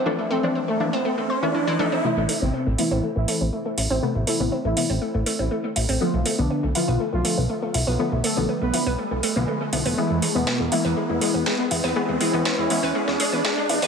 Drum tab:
HH |----------------|--o---o---o---o-|--o---o---o---oo|--o---o---o---o-|
SD |----------------|----------------|----------------|----------------|

HH |--o---o---o---oo|--o---o---o---o-|--o---o---o---oo|
SD |----------------|----o-------o---|----o----o--o---|